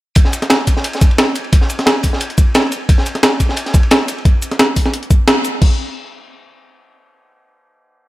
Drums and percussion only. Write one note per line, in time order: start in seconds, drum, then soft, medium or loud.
0.15 kick loud
0.15 closed hi-hat loud
0.15 ride medium
0.25 snare soft
0.33 closed hi-hat medium
0.33 ride medium
0.33 shaker medium
0.42 snare soft
0.42 closed hi-hat soft
0.42 ride soft
0.50 snare loud
0.50 closed hi-hat loud
0.50 ride medium
0.67 kick medium
0.67 closed hi-hat medium
0.67 ride medium
0.67 shaker medium
0.77 snare medium
0.84 closed hi-hat medium
0.84 ride medium
0.93 snare soft
0.93 closed hi-hat soft
1.01 kick loud
1.01 closed hi-hat medium
1.01 ride medium
1.01 shaker medium
1.11 ride soft
1.18 snare loud
1.18 closed hi-hat loud
1.18 ride medium
1.35 closed hi-hat medium
1.35 ride medium
1.35 shaker medium
1.44 ride soft
1.52 kick loud
1.52 closed hi-hat medium
1.52 ride medium
1.61 snare soft
1.70 closed hi-hat medium
1.70 ride medium
1.70 shaker medium
1.79 snare soft
1.79 closed hi-hat soft
1.86 snare loud
1.86 closed hi-hat medium
1.86 ride loud
2.03 kick medium
2.03 open hi-hat medium
2.03 ride medium
2.03 shaker medium
2.13 snare medium
2.20 closed hi-hat medium
2.20 ride medium
2.30 closed hi-hat soft
2.38 kick loud
2.38 closed hi-hat medium
2.38 ride medium
2.38 shaker medium
2.54 snare loud
2.54 closed hi-hat medium
2.54 ride loud
2.72 closed hi-hat medium
2.72 ride medium
2.72 shaker medium
2.89 kick loud
2.89 closed hi-hat medium
2.89 ride medium
2.98 snare soft
3.06 closed hi-hat medium
3.06 ride medium
3.06 shaker medium
3.15 snare soft
3.15 closed hi-hat soft
3.15 ride soft
3.23 snare loud
3.23 closed hi-hat medium
3.23 ride loud
3.40 kick medium
3.40 closed hi-hat medium
3.40 ride medium
3.40 shaker medium
3.49 snare medium
3.57 closed hi-hat medium
3.57 ride medium
3.66 snare medium
3.66 closed hi-hat soft
3.74 kick loud
3.74 closed hi-hat medium
3.74 ride medium
3.74 shaker medium
3.83 ride soft
3.91 snare loud
3.91 closed hi-hat medium
3.91 ride medium
4.08 closed hi-hat medium
4.08 ride medium
4.08 shaker medium
4.18 ride soft
4.25 kick loud
4.25 closed hi-hat medium
4.42 closed hi-hat medium
4.42 shaker medium
4.51 snare soft
4.51 closed hi-hat soft
4.59 snare loud
4.59 closed hi-hat medium
4.76 kick medium
4.76 open hi-hat medium
4.76 shaker medium
4.86 snare soft
4.94 closed hi-hat medium
5.03 closed hi-hat soft
5.11 kick loud
5.11 closed hi-hat medium
5.11 shaker medium
5.28 snare loud
5.28 closed hi-hat medium
5.45 closed hi-hat medium
5.45 shaker medium
5.62 kick loud
5.62 crash medium